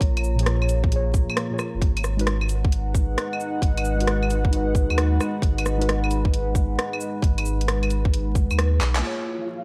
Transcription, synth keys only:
0.35 0.86 A#2 medium
0.35 0.89 F3 medium
0.41 0.91 G#4 medium
0.41 0.92 C#5 medium
0.87 1.46 A#2 medium
0.87 1.48 F3 medium
0.93 1.49 G#4 medium
0.93 1.51 C#5 loud
1.50 1.56 A#2 medium
1.50 1.56 F3 medium
1.50 1.57 G#4 medium
1.50 1.58 C#5 medium
2.17 2.23 G#3 loud
2.17 2.24 D#4 medium
2.17 2.24 F#4 medium
2.21 2.25 B4 loud
3.96 4.47 G#3 medium
3.96 4.50 D#4 medium
4.01 4.51 F#4 medium
4.01 4.53 B4 medium
4.48 5.74 G#3 medium
4.48 5.76 D#4 medium
4.54 5.77 F#4 medium
4.54 5.79 B4 loud
5.78 5.84 G#3 loud
5.78 5.84 D#4 medium
5.78 5.85 F#4 medium
5.82 5.86 B4 loud
8.99 9.64 A#3 medium
8.99 9.64 F4 medium
9.04 9.64 G#4 medium
9.04 9.64 C#5 medium

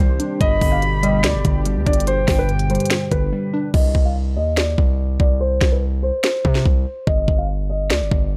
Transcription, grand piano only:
0.00 0.37 C5 medium
0.41 0.70 D#5 loud
0.72 0.80 F5 medium
1.03 1.19 D#5 medium
1.24 1.83 D5 medium
1.87 2.02 D5 medium
2.07 2.37 C5 loud
2.39 2.46 B4 medium
2.70 3.09 C5 medium
3.12 3.70 B4 medium
3.74 4.03 D#5 loud
4.05 4.13 F5 medium
4.37 4.52 D#5 medium
4.57 5.16 D5 medium
5.20 5.35 D5 medium
5.41 5.70 C5 loud
5.72 5.80 B4 medium
6.03 6.19 C5 medium
6.24 7.03 C5 medium
7.07 7.36 D#5 loud
7.38 7.46 F5 medium
7.70 7.85 D#5 medium
7.90 8.37 D5 medium

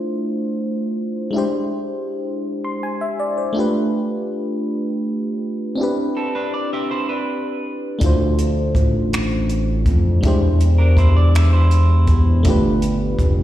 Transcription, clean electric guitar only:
6.17 6.34 C4 soft
6.17 6.34 A4 medium
6.35 6.53 D4 medium
6.35 6.52 B4 medium
6.54 6.71 D5 medium
6.73 6.90 G4 medium
6.73 6.90 E5 medium
6.91 7.08 E4 medium
6.91 7.08 C5 medium
7.09 7.98 D4 medium
7.09 7.97 B4 medium
10.78 10.97 D4 soft
10.78 10.96 A#4 medium
10.98 11.16 E4 medium
10.98 11.15 C5 medium
11.17 11.34 D5 medium
11.35 11.53 G#4 medium
11.35 11.52 E5 medium
11.53 12.42 E4 medium
11.53 12.41 C5 medium

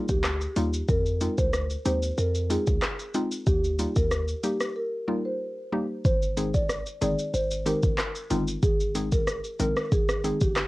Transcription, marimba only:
0.09 0.22 G4 medium
0.89 1.15 A#4 medium
1.38 1.51 C5 medium
1.85 2.00 C5 medium
2.18 2.32 A#4 medium
2.50 2.64 G#4 medium
3.47 3.73 G4 loud
3.96 4.09 A#4 medium
4.44 4.58 G4 medium
4.76 4.90 A#4 medium
5.25 5.38 C5 medium
6.05 6.31 C5 medium
6.54 6.67 D5 medium
7.02 7.16 D5 medium
7.34 7.48 C5 medium
7.66 7.80 A#4 medium
8.63 8.90 G#4 loud
9.12 9.25 A#4 medium
9.60 9.74 A#4 medium
9.92 10.06 G#4 medium
10.41 10.54 G4 medium

